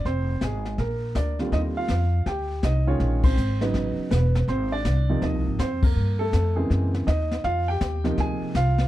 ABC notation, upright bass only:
X:1
M:4/4
L:1/8
Q:"Swing" 1/4=162
K:Bb
V:1 name="Upright bass" clef=bass
F,,,2 _A,,,2 B,,,2 D,,2 | [K:Eb] E,,2 F,,2 D,,2 C,,2 | B,,,2 A,,,2 =A,,, z =E,,,2 | A,,,2 C,,2 (3E,, C,, A,,, F,,2 |
G,,2 F,,2 _G,,2 E,,2 | F,,2 E,,2 D,, z C,,2 |]